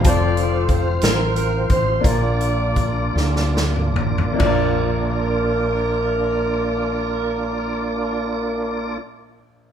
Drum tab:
CC |------------|------------|x-----------|------------|
HH |x-x-x-x-x-x-|x-x-x-------|------------|------------|
SD |------o-----|------ooo---|------------|------------|
T2 |------------|---------o--|------------|------------|
FT |------------|----------oo|o-----------|------------|
BD |o---o-----o-|o---o-------|o-----------|------------|